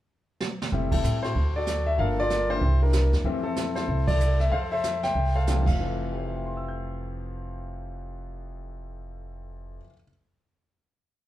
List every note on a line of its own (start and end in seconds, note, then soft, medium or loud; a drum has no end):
0.40 snare medium
0.62 snare medium
0.72 1.02 F1 medium
0.72 1.20 G3 medium
0.72 1.20 A3 soft
0.72 0.91 C4 medium
0.72 0.92 E4 medium
0.72 brush sweep soft
0.72 kick soft
0.91 1.33 C4 soft
0.91 1.33 E4 medium
0.91 1.21 A4 medium
0.91 kick medium
0.91 ride medium
1.04 1.33 A2 medium
1.04 hi-hat pedal soft
1.23 1.56 F#4 soft
1.23 1.56 A4 soft
1.23 1.52 C5 medium
1.23 snare soft
1.35 1.95 D2 medium
1.35 brush sweep soft
1.35 kick soft
1.56 1.97 F#4 medium
1.56 1.97 A4 medium
1.56 1.88 D5 medium
1.67 snare soft
1.67 hi-hat pedal soft
1.86 1.99 E5 medium
1.98 2.58 G1 medium
1.98 2.17 F3 soft
1.98 2.17 A3 soft
1.98 2.17 A#3 soft
1.98 2.17 D4 medium
1.98 2.59 A4 medium
1.98 2.19 A#4 medium
1.98 2.17 F5 medium
1.98 brush sweep soft
1.98 kick soft
2.20 2.60 F4 medium
2.20 2.60 A#4 medium
2.20 2.51 D5 loud
2.30 snare medium
2.30 hi-hat pedal medium
2.49 2.60 E3 medium
2.49 2.61 G3 medium
2.49 2.61 A#3 medium
2.49 2.61 D4 medium
2.49 2.81 E4 medium
2.49 3.10 G4 medium
2.49 2.79 C5 medium
2.61 3.09 C2 medium
2.61 brush sweep soft
2.61 kick soft
2.83 3.23 D4 medium
2.83 3.23 E4 soft
2.83 3.11 A#4 medium
2.93 snare medium
2.93 hi-hat pedal medium
3.12 3.24 E2 medium
3.12 snare soft
3.24 3.85 F2 medium
3.24 3.43 E3 medium
3.24 3.43 G3 medium
3.24 3.43 A3 medium
3.24 3.43 C4 medium
3.24 brush sweep soft
3.24 kick soft
3.43 4.04 C4 medium
3.43 3.76 E4 medium
3.43 3.76 A4 medium
3.56 snare soft
3.56 hi-hat pedal medium
3.76 4.36 E4 medium
3.76 4.08 A4 medium
3.76 4.05 C5 medium
3.76 snare soft
3.88 4.48 C2 medium
3.88 brush sweep soft
3.88 kick soft
4.07 4.52 A4 medium
4.07 4.37 D5 medium
4.07 kick medium
4.07 ride medium
4.20 hi-hat pedal soft
4.40 4.52 E5 medium
4.40 snare soft
4.52 5.12 F2 medium
4.52 4.71 A4 medium
4.52 4.72 C5 medium
4.52 4.57 F5 medium
4.52 brush sweep soft
4.52 kick soft
4.72 5.31 A4 medium
4.72 5.03 C5 medium
4.72 5.03 E5 medium
4.84 snare medium
4.84 hi-hat pedal medium
5.03 5.34 C5 medium
5.03 5.63 E5 medium
5.03 5.33 G5 loud
5.03 snare soft
5.15 5.64 C2 medium
5.15 brush sweep soft
5.15 kick soft
5.35 5.65 A4 medium
5.35 5.65 C5 medium
5.35 5.65 F5 medium
5.47 5.67 E3 soft
5.47 5.67 G3 soft
5.47 5.67 A3 soft
5.47 5.67 C4 soft
5.47 snare soft
5.47 hi-hat pedal soft
5.55 9.76 F2 medium
5.63 9.78 F1 medium
5.63 9.80 F3 medium
5.63 kick soft
5.67 9.78 F5 medium
5.67 crash medium
5.71 9.85 A3 soft
5.80 9.89 E3 medium
6.11 9.79 G4 soft
6.18 9.82 C5 soft
6.27 9.86 E5 soft
6.36 9.91 G5 soft
6.46 9.96 C6 soft
6.57 10.01 E6 soft
6.68 10.07 G6 soft